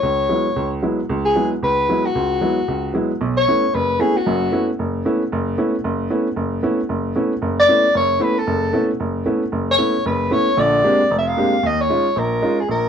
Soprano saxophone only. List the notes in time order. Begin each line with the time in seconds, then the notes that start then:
Already playing: C#5
1.25 G#4
1.64 B4
2.06 F#4
3.37 C#5
3.75 B4
4.01 G#4
4.17 F#4
7.59 D5
7.97 C#5
8.22 B4
8.38 A4
9.71 C#5
10.07 B4
10.33 C#5
10.59 D5
11.19 E5
11.27 F5
11.66 D#5
11.81 C#5
12.19 A#4
12.60 G#4
12.71 A#4